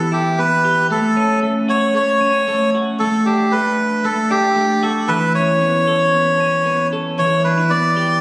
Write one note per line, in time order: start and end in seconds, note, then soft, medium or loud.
0.00 0.91 E3 medium
0.00 0.37 B3 medium
0.00 0.11 E4 medium
0.00 0.64 G4 medium
0.00 0.13 A4 loud
0.12 0.96 E4 medium
0.12 0.39 G4 medium
0.39 0.90 B3 medium
0.39 0.87 B4 medium
0.65 0.96 G4 medium
0.90 1.42 A3 medium
0.90 1.40 A4 medium
1.17 2.19 C#4 medium
1.43 1.94 A3 medium
1.68 2.74 F#4 medium
1.68 1.95 C#5 loud
1.95 2.47 A3 medium
1.95 2.70 C#5 loud
2.21 3.05 C#4 medium
2.48 3.00 A3 medium
2.75 4.82 F#4 medium
2.99 3.53 A3 medium
2.99 3.26 A4 medium
3.25 4.29 D4 medium
3.25 3.53 G4 medium
3.52 4.04 A3 medium
3.52 4.06 B4 medium
4.05 4.56 A3 soft
4.05 4.31 A4 medium
4.31 5.14 D4 medium
4.31 4.84 G4 medium
4.56 5.61 A3 medium
4.83 5.14 F#4 medium
4.83 5.10 A4 medium
5.08 7.18 E3 medium
5.08 5.33 B4 loud
5.35 6.39 C#4 medium
5.35 6.88 C#5 loud
5.61 6.14 B3 medium
5.87 6.92 A4 medium
6.14 6.66 B3 soft
6.40 7.23 C#4 medium
6.66 7.70 B3 medium
6.93 7.24 A4 medium
7.18 8.21 E3 medium
7.18 7.43 C#5 loud
7.44 7.58 D4 medium
7.44 7.71 B4 medium
7.58 8.21 E4 soft
7.70 8.21 B3 medium
7.70 8.21 D5 loud
7.97 8.21 G4 medium